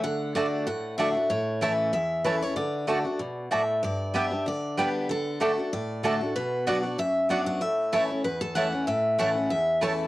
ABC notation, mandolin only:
X:1
M:4/4
L:1/8
Q:"Swing" 1/4=190
K:D
V:1 name="Mandolin"
z2 [A,Fda] z3 [A,Fda] z | z2 [A,Eca] z3 [A,Eca] z | z2 [A,Fda] z3 [A,Fda] z | z2 [B,Gdg] z3 [B,Gdg] z |
z2 [A,Fda] z3 [A,Fda] z | z2 [B,Fdf] z3 [B,Fdf] z | z2 [A,Eca] z3 [A,Eca] z | z2 [A,Eca] z3 [A,Eca] z |]